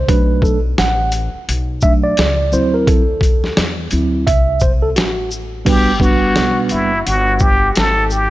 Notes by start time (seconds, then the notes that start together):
0.08 B1 F#3 A3 D4 B4, kick, closed hi-hat
0.42 A4, kick, shaker
0.78 A1 F#5, snare, closed hi-hat
1.12 closed hi-hat, shaker
1.34 muted upright bass stroke
1.48 B1, closed hi-hat
1.81 F#3 A3 D4 E5, kick, shaker
2.04 D5
2.17 C#2, snare, closed hi-hat
2.52 D2 F#3 C4 E4 C5, shaker
2.74 A#4
2.87 A4, kick, closed hi-hat
3.21 kick, closed hi-hat, shaker
3.44 snare
3.57 E2, snare, closed hi-hat
3.91 D2 F#3 C4 E4, closed hi-hat, shaker
4.27 C2 E5, kick, closed hi-hat
4.60 C5, kick, shaker
4.82 A4
4.96 A1 F#4, snare, closed hi-hat
5.31 shaker
5.65 G1 G3 B3 D4 F#4 G4 B4, kick, closed hi-hat, crash
5.99 G3 B3 D4 F#4 B4, kick, shaker
6.36 B1, snare, closed hi-hat
6.69 F#1 E4, closed hi-hat, shaker
7.06 G1 F#4, closed hi-hat
7.39 G4, kick, shaker
7.76 G#1 A4, snare, closed hi-hat
8.10 G4, shaker